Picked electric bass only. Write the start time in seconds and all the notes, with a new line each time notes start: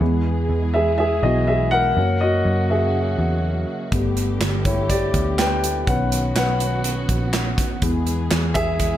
0.01 E2
0.49 E2
1.23 B1
1.97 F#2
2.45 F#2
3.19 E2
3.92 G1
4.41 G1
5.14 D2
5.88 B1
6.36 B1
7.09 A#1
7.82 E2
8.32 E2